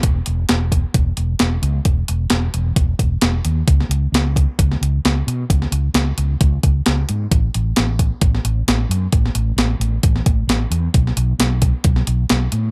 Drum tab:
HH |x-x-x-x-x-x-x-x-|x-x-x-x-x-x-x-x-|x-x-x-x-x-x-x-x-|x-x-x-x-x-x-x-x-|
SD |----o-------o---|----o-------o---|-o--o----o--o---|-o--o-------o---|
BD |o-----o-o-------|o-------o-o-----|o-----o-o-------|o-------o-o-----|

HH |x-x-x-x-x-x-x-x-|x-x-x-x-x-x-x-x-|x-x-x-x-x-x-x-x-|
SD |----o----o--o---|-o--o----o--o---|-o--o----o--o---|
BD |o-----o-o-------|o-------o-o-----|o-----o-o-------|